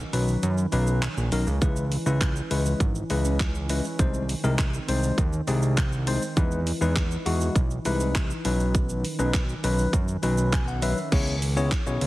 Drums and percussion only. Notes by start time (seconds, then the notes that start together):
0.13 open hi-hat, shaker
0.28 shaker
0.43 closed hi-hat, shaker
0.58 shaker
0.72 open hi-hat, shaker
0.87 shaker
1.02 clap, closed hi-hat, shaker
1.17 shaker
1.32 open hi-hat, shaker
1.47 shaker
1.62 kick, closed hi-hat, shaker
1.76 shaker
1.92 open hi-hat, shaker
2.06 shaker
2.21 kick, clap, closed hi-hat, shaker
2.36 shaker
2.51 open hi-hat, shaker
2.66 shaker
2.80 kick, closed hi-hat, shaker
2.95 shaker
3.10 open hi-hat, shaker
3.25 shaker
3.40 kick, clap, closed hi-hat, shaker
3.55 shaker
3.70 open hi-hat, shaker
3.85 shaker
3.99 kick, closed hi-hat, shaker
4.14 shaker
4.29 open hi-hat, shaker
4.44 shaker
4.59 kick, clap, closed hi-hat, shaker
4.74 shaker
4.89 open hi-hat, shaker
5.03 shaker
5.18 kick, closed hi-hat, shaker
5.33 shaker
5.48 open hi-hat, shaker
5.62 shaker
5.77 kick, clap, closed hi-hat, shaker
5.92 shaker
6.07 open hi-hat, shaker
6.22 shaker
6.37 kick, closed hi-hat, shaker
6.51 shaker
6.67 open hi-hat, shaker
6.82 shaker
6.96 kick, clap, closed hi-hat, shaker
7.11 shaker
7.26 open hi-hat, shaker
7.41 shaker
7.56 kick, closed hi-hat, shaker
7.71 shaker
7.85 open hi-hat, shaker
8.00 shaker
8.15 kick, clap, closed hi-hat, shaker
8.30 shaker
8.45 open hi-hat, shaker
8.60 shaker
8.75 kick, closed hi-hat, shaker
8.89 shaker
9.05 open hi-hat, shaker
9.19 shaker
9.34 kick, clap, closed hi-hat, shaker
9.49 shaker
9.64 open hi-hat, shaker
9.79 shaker
9.93 kick, closed hi-hat, shaker
10.08 shaker
10.23 open hi-hat, shaker
10.38 shaker
10.53 kick, clap, closed hi-hat, shaker
10.68 shaker
10.82 open hi-hat, shaker
10.97 shaker
11.12 kick, closed hi-hat, crash, shaker
11.27 shaker
11.42 open hi-hat, shaker
11.57 shaker
11.71 kick, clap, closed hi-hat, shaker
11.87 shaker
12.01 open hi-hat, shaker